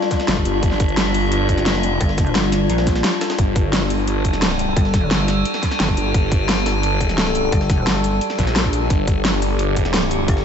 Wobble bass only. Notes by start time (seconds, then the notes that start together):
0.28 G1
2.01 G1
2.35 G1
2.70 A#1
4.77 G1
5.11 G1
5.80 G1
7.52 G1
7.87 G1
10.28 G1